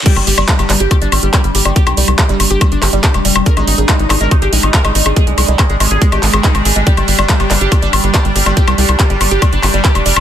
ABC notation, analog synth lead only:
X:1
M:4/4
L:1/16
Q:1/4=141
K:none
V:1 name="Analog synth lead" clef=bass
G G, G, z G, G, G, G G, D G, G, G G, G, G, | G G, G, z G, G, G, G G, D G, G, G G, G, G, | _B _E E z E E E B E G E E B E E E | _A _A, A, z A, A, A, A A, G A, A, _E A, A, A, |
G G, G, z G, G, G, G G, D G, G, G G, G, G, | G G, G, z G, G, G, G G, D G, G, G G, G, G, |]